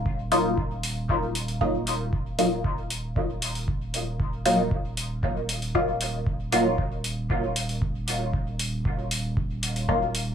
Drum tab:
HH |--o---o---oo--o-|--o---o---oo--o-|--o---o---oo--o-|--o---o---oo--o-|
BD |o---o---o---o---|o---o---o---o---|o---o---o---o---|o---o---o---o---|

HH |--o---o---oo--o-|
BD |o---o---o---o---|